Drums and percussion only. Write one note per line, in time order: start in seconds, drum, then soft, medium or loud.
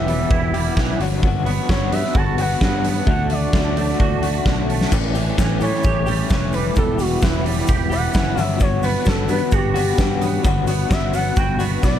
0.08 open hi-hat medium
0.31 kick loud
0.54 open hi-hat medium
0.77 kick loud
0.77 snare loud
1.01 open hi-hat medium
1.23 kick loud
1.46 open hi-hat medium
1.69 kick loud
1.69 snare loud
1.92 open hi-hat medium
2.05 snare soft
2.15 kick loud
2.38 open hi-hat medium
2.61 kick loud
2.61 snare loud
2.84 open hi-hat medium
3.07 kick loud
3.30 open hi-hat medium
3.53 kick loud
3.53 snare loud
3.77 open hi-hat medium
3.89 snare soft
4.00 kick loud
4.23 open hi-hat medium
4.46 kick loud
4.46 snare loud
4.70 open hi-hat medium
4.81 snare medium
4.92 kick loud
4.92 crash medium
4.92 shaker loud
5.15 open hi-hat medium
5.15 shaker medium
5.38 kick loud
5.38 snare loud
5.38 shaker loud
5.60 open hi-hat medium
5.60 shaker medium
5.74 snare soft
5.83 kick loud
5.83 shaker medium
6.06 open hi-hat medium
6.06 shaker medium
6.29 kick loud
6.29 snare loud
6.29 shaker medium
6.52 open hi-hat loud
6.52 shaker medium
6.75 kick loud
6.75 shaker medium
6.99 open hi-hat medium
6.99 shaker medium
7.21 kick loud
7.21 snare loud
7.21 shaker loud
7.46 open hi-hat loud
7.59 snare soft
7.67 kick loud
7.67 shaker loud
7.91 open hi-hat medium
7.91 shaker medium
8.13 kick loud
8.13 snare loud
8.13 shaker medium
8.37 open hi-hat medium
8.37 shaker medium
8.60 kick loud
8.60 shaker loud
8.83 open hi-hat medium
8.83 shaker medium
9.05 kick loud
9.05 snare loud
9.05 shaker loud
9.28 open hi-hat medium
9.28 shaker medium
9.51 kick loud
9.51 shaker loud
9.76 open hi-hat medium
9.76 shaker medium
9.98 kick loud
9.98 snare loud
9.98 shaker loud
10.21 open hi-hat medium
10.21 shaker medium
10.44 kick loud
10.44 shaker loud
10.67 open hi-hat medium
10.67 shaker medium
10.91 kick loud
10.91 snare loud
10.91 shaker loud
11.13 open hi-hat loud
11.13 shaker medium
11.36 kick loud
11.36 shaker loud
11.59 open hi-hat medium
11.59 shaker medium
11.83 kick loud
11.83 snare medium
11.83 shaker loud